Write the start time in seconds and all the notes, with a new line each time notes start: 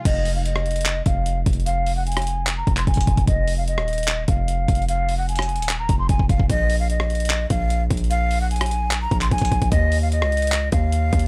0.05 F1 D#5, kick, closed hi-hat, crash
0.25 open hi-hat
0.35 F5
0.45 D#5, closed hi-hat
0.56 cross-stick
0.66 closed hi-hat
0.71 closed hi-hat
0.76 closed hi-hat
0.81 closed hi-hat
0.86 clap
1.06 F1 F5, kick, closed hi-hat
1.26 closed hi-hat
1.46 F1, kick, closed hi-hat
1.53 closed hi-hat
1.60 closed hi-hat
1.66 F5, closed hi-hat
1.86 open hi-hat
1.97 F#5
2.07 G#5, closed hi-hat
2.12 closed hi-hat
2.17 cross-stick, closed hi-hat
2.22 closed hi-hat
2.27 closed hi-hat
2.47 clap, closed hi-hat
2.57 A#5
2.67 F1, kick, closed hi-hat
2.77 C6, clap, closed hi-hat
2.87 F1 G#5, kick, closed hi-hat
2.94 F1, kick, closed hi-hat
3.01 closed hi-hat
3.07 F1, kick, closed hi-hat
3.17 F1, kick, closed hi-hat
3.27 F1 D#5, kick, closed hi-hat
3.48 open hi-hat
3.58 F5
3.68 D#5, closed hi-hat
3.78 D#1, cross-stick
3.88 closed hi-hat
3.93 closed hi-hat
3.98 closed hi-hat
4.03 closed hi-hat
4.08 clap, closed hi-hat
4.28 F1 F5, kick, closed hi-hat
4.48 closed hi-hat
4.68 F1, kick, closed hi-hat
4.75 closed hi-hat
4.82 closed hi-hat
4.89 F5, closed hi-hat
5.09 open hi-hat
5.18 F#5
5.29 G#5, closed hi-hat
5.36 cross-stick, closed hi-hat
5.42 closed hi-hat
5.49 closed hi-hat
5.56 D#1, closed hi-hat
5.62 closed hi-hat
5.69 clap, closed hi-hat
5.79 A#5
5.89 F1, kick, closed hi-hat
5.99 C6
6.09 F1 G#5, kick, closed hi-hat
6.19 F1, kick
6.29 F1 F5, kick, closed hi-hat
6.39 F1, kick
6.50 A#1 D#5, kick, closed hi-hat
6.70 open hi-hat
6.80 F5
6.90 D#5, closed hi-hat
7.00 cross-stick
7.10 closed hi-hat
7.15 closed hi-hat
7.20 closed hi-hat
7.25 closed hi-hat
7.30 clap, closed hi-hat
7.50 A#1 F5, kick, closed hi-hat
7.70 closed hi-hat
7.91 A#1, kick, closed hi-hat
7.97 closed hi-hat
8.04 closed hi-hat
8.11 F5, closed hi-hat
8.31 open hi-hat
8.41 F#5
8.51 G#5, closed hi-hat
8.56 closed hi-hat
8.61 cross-stick, closed hi-hat
8.66 closed hi-hat
8.71 closed hi-hat
8.91 clap, closed hi-hat
9.01 A#5
9.11 A#1, kick, closed hi-hat
9.21 C6, clap, closed hi-hat
9.31 A#1 G#5, kick, closed hi-hat
9.38 A#1, kick, closed hi-hat
9.45 closed hi-hat
9.52 A#1, kick, closed hi-hat
9.62 A#1, kick, closed hi-hat
9.72 D#2 D#5, kick, closed hi-hat
9.92 open hi-hat
10.02 F5
10.12 D#5, closed hi-hat
10.22 C#2, cross-stick
10.32 closed hi-hat
10.37 closed hi-hat
10.42 closed hi-hat
10.47 closed hi-hat
10.52 clap, closed hi-hat
10.72 D#2 F5, kick, closed hi-hat
10.92 closed hi-hat
11.13 D#2, kick, closed hi-hat
11.19 closed hi-hat